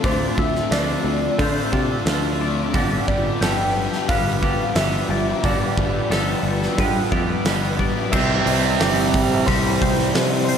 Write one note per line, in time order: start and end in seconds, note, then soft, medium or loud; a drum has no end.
0.00 0.69 D3 medium
0.00 0.37 A3 medium
0.00 2.70 C4 medium
0.00 0.36 D4 loud
0.00 8.10 F4 medium
0.00 0.72 A4 medium
0.00 0.05 D5 medium
0.00 2.71 A5 medium
0.00 2.71 E6 medium
0.00 kick loud
0.00 open hi-hat soft
0.04 0.27 D2 medium
0.04 0.70 D3 medium
0.04 0.71 A3 loud
0.04 0.72 D4 medium
0.04 0.73 F4 medium
0.04 0.40 C5 loud
0.04 1.39 D5 medium
0.36 0.61 D2 medium
0.36 0.71 A3 medium
0.36 0.72 D4 medium
0.36 0.74 E5 loud
0.36 kick medium
0.55 snare soft
0.71 0.94 D2 medium
0.71 1.37 D3 medium
0.71 1.05 A3 medium
0.71 1.38 A3 medium
0.71 1.04 D4 medium
0.71 1.41 D4 medium
0.71 1.41 F4 medium
0.71 1.39 A4 medium
0.71 2.41 D5 loud
0.71 snare loud
0.71 open hi-hat medium
1.04 1.28 D2 medium
1.04 1.38 A3 medium
1.04 1.39 D4 medium
1.38 2.05 D3 medium
1.38 1.62 D3 loud
1.38 2.05 D3 medium
1.38 1.72 A3 medium
1.38 1.73 A3 medium
1.38 1.71 D4 medium
1.38 1.73 D4 medium
1.38 1.72 F4 medium
1.38 1.73 C5 medium
1.38 kick loud
1.38 open hi-hat medium
1.71 1.96 C3 medium
1.71 2.06 A3 medium
1.71 2.05 A3 medium
1.71 2.08 D4 medium
1.71 2.07 D4 medium
1.71 2.08 F4 medium
1.71 2.41 D5 medium
1.71 kick medium
2.06 2.76 D2 loud
2.06 2.72 D3 medium
2.06 2.72 A3 medium
2.06 2.41 A3 medium
2.06 2.74 D4 medium
2.06 2.40 D4 medium
2.06 2.75 F4 medium
2.06 snare loud
2.06 open hi-hat medium
2.41 2.73 A3 medium
2.41 5.91 D4 medium
2.41 2.75 D5 medium
2.73 2.97 G1 medium
2.73 4.08 G2 medium
2.73 3.40 G2 medium
2.73 3.75 D3 medium
2.73 3.08 D3 medium
2.73 3.40 F3 medium
2.73 3.42 G3 loud
2.73 3.07 G3 loud
2.73 3.42 B3 medium
2.73 3.43 G4 medium
2.73 8.10 B4 medium
2.73 4.44 D5 medium
2.73 8.10 G5 medium
2.73 5.42 D6 medium
2.73 kick loud
2.73 open hi-hat medium
3.08 3.31 G1 medium
3.08 3.40 D3 medium
3.08 3.42 G3 medium
3.08 3.43 D5 medium
3.08 kick medium
3.40 3.87 G1 medium
3.40 4.09 G2 medium
3.40 3.75 D3 medium
3.40 4.08 F3 medium
3.40 4.10 G3 medium
3.40 3.74 G3 medium
3.40 4.10 B3 medium
3.40 4.10 G4 medium
3.40 4.10 A4 medium
3.40 4.10 G5 loud
3.40 snare loud
3.40 open hi-hat medium
3.74 4.09 D3 medium
3.74 4.10 G3 medium
3.93 snare soft
4.08 4.55 G1 medium
4.08 4.76 G2 medium
4.08 4.75 G2 medium
4.08 4.77 D3 medium
4.08 4.43 D3 medium
4.08 4.44 F3 medium
4.08 4.43 G3 medium
4.08 4.42 G3 medium
4.08 4.42 B3 loud
4.08 4.42 G4 loud
4.08 6.14 B4 medium
4.08 4.78 F5 loud
4.08 kick loud
4.08 open hi-hat medium
4.42 4.76 D3 medium
4.42 4.75 F3 medium
4.42 4.77 G3 medium
4.42 4.76 G3 medium
4.42 4.77 B3 medium
4.42 4.78 G4 medium
4.42 5.09 D5 medium
4.42 kick medium
4.75 4.99 G1 loud
4.75 5.41 G2 medium
4.75 5.09 D3 medium
4.75 5.43 F3 medium
4.75 5.43 G3 medium
4.75 5.09 G3 medium
4.75 5.44 B3 medium
4.75 5.44 G4 medium
4.75 5.46 E5 medium
4.75 snare loud
4.75 open hi-hat medium
5.09 5.32 G1 medium
5.09 5.43 D3 medium
5.09 5.44 G3 medium
5.09 5.43 D5 medium
5.43 5.67 G1 medium
5.43 6.09 G2 medium
5.43 6.45 G2 medium
5.43 6.45 D3 loud
5.43 5.77 D3 medium
5.43 6.09 F3 medium
5.43 6.10 G3 medium
5.43 5.75 G3 medium
5.43 6.10 B3 medium
5.43 6.11 G4 medium
5.43 6.11 D5 medium
5.43 6.79 D5 medium
5.43 8.11 E6 medium
5.43 kick loud
5.43 open hi-hat medium
5.76 6.00 G1 medium
5.76 6.10 D3 medium
5.76 6.11 G3 medium
5.76 kick medium
6.10 6.33 G1 medium
6.10 6.75 G2 medium
6.10 6.44 D3 medium
6.10 6.78 F3 medium
6.10 6.78 G3 medium
6.10 6.42 G3 medium
6.10 6.79 B3 medium
6.10 6.79 G4 medium
6.10 6.79 A4 medium
6.10 snare loud
6.10 open hi-hat medium
6.43 6.67 G1 medium
6.43 6.77 D3 soft
6.43 6.77 G3 medium
6.63 snare soft
6.76 7.45 G2 medium
6.76 7.46 G2 medium
6.76 7.01 G2 medium
6.76 7.12 D3 medium
6.76 7.46 D3 medium
6.76 7.13 F3 medium
6.76 7.10 G3 medium
6.76 7.13 G3 medium
6.76 7.12 B3 medium
6.76 7.11 G4 medium
6.76 7.13 B4 medium
6.76 kick loud
6.76 open hi-hat medium
7.11 7.35 F2 medium
7.11 7.46 D3 medium
7.11 7.44 F3 medium
7.11 7.46 G3 medium
7.11 7.44 G3 medium
7.11 7.45 B3 medium
7.11 7.46 G4 medium
7.11 7.78 D5 medium
7.11 kick medium
7.45 7.91 G1 medium
7.45 8.11 G2 medium
7.45 7.80 D3 medium
7.45 8.11 F3 medium
7.45 8.11 G3 medium
7.45 7.78 G3 medium
7.45 8.12 B3 medium
7.45 8.12 G4 medium
7.45 snare loud
7.45 open hi-hat medium
7.79 8.12 D3 medium
7.79 8.11 G3 medium
7.79 8.13 D5 medium
7.79 kick medium
8.12 8.43 C2 medium
8.12 8.78 C3 medium
8.12 10.58 C3 medium
8.12 10.58 E3 medium
8.12 8.47 G3 loud
8.12 10.58 G3 medium
8.12 10.58 C4 medium
8.12 8.44 C4 medium
8.12 10.58 C4 medium
8.12 10.58 E4 medium
8.12 10.58 G4 medium
8.12 8.81 C5 loud
8.12 9.48 E5 loud
8.12 kick loud
8.12 crash loud
8.16 10.58 G4 medium
8.46 8.76 C2 medium
8.46 8.80 G3 medium
8.46 8.80 C4 medium
8.46 open hi-hat medium
8.79 9.39 G1 medium
8.79 9.47 C3 medium
8.79 9.15 G3 medium
8.79 9.12 C4 medium
8.79 10.58 G4 medium
8.79 snare loud
8.79 open hi-hat medium
9.13 10.15 G3 medium
9.13 10.15 C4 medium
9.13 kick medium
9.13 open hi-hat medium
9.46 9.77 C2 medium
9.46 10.58 C3 medium
9.46 10.58 G3 medium
9.46 10.44 C5 loud
9.46 9.85 B5 medium
9.46 kick medium
9.46 open hi-hat medium
9.51 10.58 C4 medium
9.81 10.11 C2 medium
9.81 10.47 C5 medium
9.81 kick medium
9.81 open hi-hat medium
9.99 snare soft
10.15 10.58 C3 medium
10.15 10.49 G3 medium
10.15 10.47 C4 medium
10.15 snare loud
10.15 open hi-hat medium
10.45 10.58 C4 medium
10.45 10.58 C5 medium
10.49 10.58 G3 medium
10.49 open hi-hat medium